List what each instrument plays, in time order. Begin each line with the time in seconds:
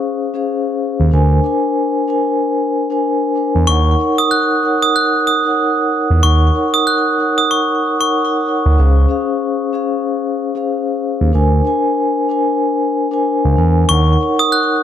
Already playing: vibraphone C#4 G#4 C5 F5
0.34 vibraphone C#4 G#4 C5 F5
1.00 analog synth bass D#2
1.11 analog synth bass D2, vibraphone D4 A#4 C5 G#5
1.44 vibraphone D4 A#4 C5 G#5
2.08 vibraphone D4 A#4 C5 G#5
2.90 vibraphone D4 A#4 C5 G#5
3.35 vibraphone D4 A#4 C5 G#5
3.55 analog synth bass E2
3.67 analog synth bass D#2, vibraphone D#4 A#4 C#5 F#5, glockenspiel C#6
3.99 vibraphone D#4 A#4 C#5 F#5
4.18 glockenspiel D#6
4.31 glockenspiel F#6
4.63 vibraphone D#4 A#4 C#5 F#5
4.82 glockenspiel D#6
4.96 glockenspiel F#6
5.27 glockenspiel D#6
5.45 vibraphone D#4 A#4 C#5 F#5
6.10 analog synth bass E2
6.23 analog synth bass D#2, vibraphone D#4 A#4 C#5 F#5, glockenspiel C#6
6.54 vibraphone D#4 A#4 C#5 F#5
6.74 glockenspiel D#6
6.87 glockenspiel F#6
7.18 vibraphone D#4 A#4 C#5 F#5
7.38 glockenspiel D#6
7.51 glockenspiel C#6
8.00 vibraphone D#4 A#4 C#5 F#5, glockenspiel C#6
8.46 vibraphone D#4 A#4 C#5 F#5
8.66 analog synth bass D2
8.78 analog synth bass C#2, vibraphone C#4 G#4 C5 F5
9.09 vibraphone C#4 G#4 C5 F5
9.73 vibraphone C#4 G#4 C5 F5
10.55 vibraphone C#4 G#4 C5 F5
11.21 analog synth bass D#2
11.32 analog synth bass D2, vibraphone D4 A#4 C5 G#5
11.65 vibraphone D4 A#4 C5 G#5
12.29 vibraphone D4 A#4 C5 G#5
13.11 vibraphone D4 A#4 C5 G#5
13.44 analog synth bass C#2
13.57 analog synth bass E2, vibraphone D4 A#4 C5 G#5
13.89 analog synth bass D#2, vibraphone D#4 A#4 C#5 F#5, glockenspiel C#6
14.20 vibraphone D#4 A#4 C#5 F#5
14.39 glockenspiel D#6
14.52 glockenspiel F#6